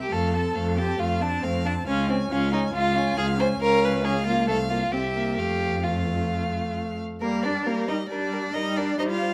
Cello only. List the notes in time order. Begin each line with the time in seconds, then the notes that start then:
0.11 F2
0.56 F2
0.99 F2
1.43 F2
1.88 C#2
2.31 C#2
2.75 C#2
3.17 C#2
3.61 C#2
4.48 C2
4.92 C2
5.37 F2
7.21 A#3
7.44 D4
7.67 A#3
7.88 D#4
8.10 D4
8.55 D#4
8.77 D4
8.98 D#4
9.09 F4